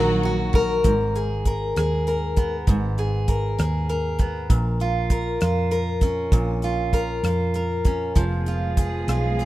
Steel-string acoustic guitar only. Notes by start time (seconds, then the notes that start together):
Already playing: D#3 F#3 F#4 A#4
0.25 F#4
0.55 A#4
0.85 G#2
1.16 G#4
1.47 A#4
1.78 G#4
2.08 A#4
2.37 B3
2.69 G#2
2.99 G#4
3.29 A#4
3.60 G#4
3.89 A#4
4.20 B3
4.50 A#2
4.81 F4
5.11 A#4
5.42 F4
5.72 A#4
6.03 C#4
6.33 A#2
6.64 F4
6.94 A#4
7.24 F4
7.55 A#4
7.86 C#4
8.16 F3
8.48 F4
8.78 G#4
9.09 F4
9.41 G#4